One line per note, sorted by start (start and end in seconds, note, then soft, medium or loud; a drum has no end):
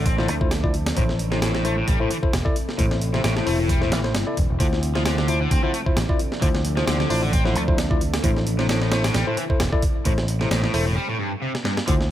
0.00 0.29 A1 medium
0.00 0.93 F3 medium
0.00 8.20 C4 medium
0.00 0.93 D4 medium
0.00 2.75 A4 medium
0.00 0.93 D5 medium
0.06 0.15 C4 medium
0.06 kick loud
0.06 closed hi-hat medium
0.18 0.26 D3 loud
0.18 0.28 E4 medium
0.18 0.28 F4 medium
0.18 0.28 C5 loud
0.18 snare soft
0.28 0.91 D2 medium
0.28 0.34 A3 medium
0.28 closed hi-hat medium
0.41 0.51 E4 medium
0.41 0.51 F4 medium
0.41 0.51 C5 medium
0.41 kick medium
0.51 snare loud
0.51 closed hi-hat medium
0.64 0.73 E4 medium
0.64 0.73 F4 medium
0.64 0.73 D5 loud
0.64 kick medium
0.74 closed hi-hat medium
0.86 snare loud
0.86 closed hi-hat medium
0.97 1.82 A1 loud
0.97 1.03 A2 medium
0.97 1.15 E4 medium
0.97 4.57 E4 medium
0.97 1.15 A4 medium
0.97 1.15 C5 medium
0.97 kick loud
0.97 closed hi-hat medium
1.09 snare soft
1.19 closed hi-hat medium
1.32 1.41 C3 medium
1.32 1.62 E4 medium
1.32 1.62 A4 medium
1.32 1.62 C5 medium
1.32 snare medium
1.42 1.52 A2 medium
1.42 snare loud
1.42 closed hi-hat medium
1.54 1.64 A2 medium
1.54 snare medium
1.65 1.74 A3 loud
1.65 1.77 E4 medium
1.65 1.77 A4 medium
1.65 1.77 C5 medium
1.65 closed hi-hat medium
1.77 1.87 A2 loud
1.88 1.95 A1 medium
1.88 1.97 G3 loud
1.88 kick loud
1.88 closed hi-hat medium
2.00 2.08 A2 loud
2.00 2.10 E4 medium
2.00 2.10 A4 medium
2.00 2.10 C5 loud
2.11 2.16 E3 medium
2.11 closed hi-hat medium
2.23 2.33 E4 medium
2.23 2.32 A4 medium
2.23 2.33 C5 medium
2.23 muted picked electric bass stroke soft
2.23 kick medium
2.33 2.41 E1 medium
2.33 snare loud
2.33 closed hi-hat medium
2.45 2.55 E4 medium
2.45 2.55 A4 medium
2.45 2.55 D5 loud
2.45 kick medium
2.56 closed hi-hat medium
2.69 snare soft
2.78 3.19 A1 loud
2.78 2.84 A2 medium
2.78 2.96 E4 medium
2.78 4.59 G4 medium
2.78 2.96 A4 medium
2.78 2.96 C5 medium
2.78 kick loud
2.78 closed hi-hat medium
2.91 snare medium
3.02 closed hi-hat medium
3.13 3.23 C3 medium
3.13 3.44 E4 medium
3.13 3.44 A4 medium
3.13 3.44 C5 medium
3.13 snare soft
3.24 3.40 A1 medium
3.24 3.34 A2 medium
3.24 snare loud
3.24 closed hi-hat medium
3.37 3.46 A2 medium
3.37 snare soft
3.46 3.92 E1 medium
3.46 3.57 A3 medium
3.46 3.58 E4 medium
3.46 3.58 A4 medium
3.46 3.58 C5 medium
3.46 open hi-hat medium
3.60 3.69 A2 medium
3.69 3.79 G3 loud
3.69 kick loud
3.69 closed hi-hat medium
3.81 3.90 A2 loud
3.81 3.91 E4 medium
3.81 3.91 A4 medium
3.81 3.91 C5 loud
3.81 snare soft
3.92 4.15 A1 medium
3.92 3.98 E3 medium
3.92 snare loud
3.92 closed hi-hat medium
4.04 4.14 E4 medium
4.04 4.14 A4 medium
4.04 4.14 C5 medium
4.04 snare soft
4.15 4.23 G1 medium
4.15 snare loud
4.15 closed hi-hat medium
4.27 4.37 E4 medium
4.27 4.37 A4 medium
4.27 4.37 D5 loud
4.37 4.45 E1 medium
4.37 kick medium
4.37 closed hi-hat medium
4.50 4.57 E1 medium
4.60 5.46 D2 loud
4.60 4.66 D3 medium
4.60 8.20 F3 medium
4.60 8.20 D4 medium
4.60 4.78 E4 medium
4.60 4.78 F4 medium
4.60 10.92 A4 medium
4.60 4.78 C5 medium
4.60 8.20 D5 medium
4.60 kick loud
4.60 closed hi-hat medium
4.73 snare soft
4.83 closed hi-hat medium
4.95 5.05 F3 medium
4.95 5.26 E4 medium
4.95 5.26 F4 medium
4.95 5.26 C5 medium
4.95 snare medium
5.06 5.15 D3 medium
5.06 snare loud
5.06 closed hi-hat medium
5.18 5.27 D3 medium
5.18 snare medium
5.28 5.38 D4 loud
5.28 5.40 E4 medium
5.28 5.41 F4 medium
5.28 5.40 C5 medium
5.28 closed hi-hat medium
5.41 5.50 D3 medium
5.51 5.59 D2 medium
5.51 5.61 C4 loud
5.51 kick loud
5.51 closed hi-hat medium
5.63 5.71 D3 loud
5.63 5.73 E4 medium
5.63 5.73 F4 medium
5.63 5.73 C5 loud
5.74 5.80 A3 medium
5.74 closed hi-hat medium
5.86 5.96 E4 medium
5.86 5.96 F4 medium
5.86 5.96 C5 medium
5.86 muted picked electric bass stroke soft
5.86 kick medium
5.97 6.04 A1 loud
5.97 snare loud
5.97 closed hi-hat medium
6.09 6.19 E4 medium
6.09 6.19 F4 medium
6.09 6.19 D5 loud
6.09 kick loud
6.19 closed hi-hat medium
6.32 snare soft
6.41 6.82 D2 medium
6.41 6.48 D3 medium
6.41 6.60 E4 medium
6.41 6.60 F4 medium
6.41 6.60 C5 medium
6.41 kick loud
6.41 closed hi-hat medium
6.55 snare medium
6.65 closed hi-hat medium
6.77 6.86 F3 medium
6.77 7.08 E4 medium
6.77 7.08 F4 medium
6.77 7.08 C5 medium
6.77 snare soft
6.87 7.04 D2 loud
6.87 6.97 D3 medium
6.87 snare loud
6.87 closed hi-hat medium
6.99 7.09 D3 medium
6.99 snare soft
7.10 7.56 A1 medium
7.10 7.20 D4 loud
7.10 7.22 E4 medium
7.10 7.22 F4 medium
7.10 7.22 C5 medium
7.10 open hi-hat medium
7.22 7.32 D3 loud
7.33 7.42 C4 loud
7.33 kick loud
7.33 closed hi-hat medium
7.45 7.53 D3 loud
7.45 7.55 E4 loud
7.45 7.55 F4 medium
7.45 7.55 C5 loud
7.45 snare soft
7.56 8.19 D2 medium
7.56 7.61 A3 medium
7.56 closed hi-hat medium
7.68 7.78 E4 medium
7.68 7.78 F4 medium
7.68 7.78 C5 medium
7.68 kick medium
7.78 snare loud
7.78 closed hi-hat medium
7.91 8.01 E4 medium
7.91 8.01 F4 medium
7.91 8.01 D5 loud
7.91 kick medium
8.01 closed hi-hat medium
8.14 snare loud
8.14 closed hi-hat medium
8.23 9.09 A1 medium
8.23 8.30 A2 medium
8.23 10.94 C4 medium
8.23 8.42 E4 medium
8.23 10.94 E4 medium
8.23 8.42 A4 medium
8.23 8.42 C5 medium
8.23 kick loud
8.23 closed hi-hat medium
8.36 snare soft
8.47 closed hi-hat medium
8.59 8.68 C3 medium
8.59 8.90 E4 medium
8.59 8.90 A4 medium
8.59 8.90 C5 medium
8.59 snare medium
8.69 8.79 A2 medium
8.69 snare loud
8.69 closed hi-hat medium
8.81 8.91 A2 medium
8.81 snare soft
8.92 9.02 A3 loud
8.92 9.04 E4 medium
8.92 9.04 A4 medium
8.92 9.04 C5 loud
8.92 snare loud
8.92 closed hi-hat medium
9.04 9.14 A2 loud
9.04 snare loud
9.04 closed hi-hat medium
9.14 9.22 A1 medium
9.14 9.24 G3 loud
9.14 snare loud
9.14 closed hi-hat medium
9.27 9.35 A2 loud
9.27 9.37 E4 medium
9.27 9.37 A4 medium
9.27 9.37 C5 loud
9.37 9.43 E3 medium
9.37 closed hi-hat medium
9.50 9.60 E4 medium
9.50 9.60 A4 medium
9.50 9.60 C5 loud
9.50 muted picked electric bass stroke soft
9.50 kick medium
9.60 9.68 E1 loud
9.60 snare loud
9.60 closed hi-hat medium
9.72 9.82 E4 medium
9.72 9.82 A4 medium
9.72 9.82 D5 loud
9.72 kick loud
9.82 kick medium
9.82 closed hi-hat medium
10.05 10.46 A1 loud
10.05 10.11 A2 medium
10.05 10.24 E4 medium
10.05 10.24 A4 medium
10.05 10.24 C5 medium
10.05 kick loud
10.05 closed hi-hat medium
10.18 snare medium
10.28 closed hi-hat medium
10.41 10.50 C3 medium
10.41 10.71 E4 medium
10.41 10.72 A4 medium
10.41 10.72 C5 medium
10.41 snare soft
10.51 10.67 A1 loud
10.51 10.61 A2 medium
10.51 snare loud
10.51 closed hi-hat medium
10.64 10.73 A2 medium
10.64 snare medium
10.74 10.97 E1 medium
10.74 10.83 A3 loud
10.74 10.86 E4 medium
10.74 10.86 A4 medium
10.74 10.86 C5 medium
10.74 open hi-hat medium
10.86 10.96 A2 loud
10.96 11.06 G3 loud
11.09 11.17 A2 loud
11.19 11.31 G2 loud
11.42 11.51 C3 medium
11.55 snare medium
11.64 11.76 G2 medium
11.64 snare medium
11.77 snare medium
11.87 12.11 D2 loud
11.87 11.93 D3 medium
11.87 12.06 E4 medium
11.87 12.05 F4 medium
11.87 12.05 C5 medium
11.87 kick loud
11.87 closed hi-hat medium
12.01 snare soft